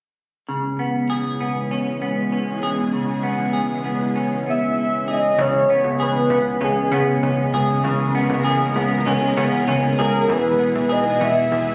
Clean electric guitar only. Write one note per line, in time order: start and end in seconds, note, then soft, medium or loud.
0.49 2.92 C#3 medium
0.79 1.40 B3 soft
1.10 2.63 G#4 medium
1.41 2.01 B3 soft
1.71 2.32 C#4 medium
2.02 3.23 B3 soft
2.32 4.15 C#4 soft
2.63 3.53 G#4 medium
2.93 5.38 C#3 medium
3.23 3.85 B3 medium
3.53 5.07 G#4 medium
3.85 4.46 B3 soft
4.16 4.77 C#4 medium
4.46 5.69 B3 medium
4.77 5.73 C#4 soft
5.08 5.99 G#4 medium
5.39 7.83 C#3 medium
5.70 6.30 B3 medium
6.00 7.53 G#4 medium
6.31 6.92 B3 medium
6.61 7.22 C#4 medium
6.92 8.14 B3 medium
7.23 9.05 C#4 medium
7.54 8.44 G#4 medium
7.84 10.28 C#3 medium
8.15 8.75 B3 medium
8.44 9.98 G#4 medium
8.76 9.36 B3 medium
9.06 9.66 C#4 medium
9.37 10.58 B3 medium
9.68 10.35 C#4 medium
9.99 10.89 G#4 medium
10.28 11.75 E3 medium
10.59 11.20 B3 medium
10.89 11.75 G#4 medium
11.20 11.75 B3 medium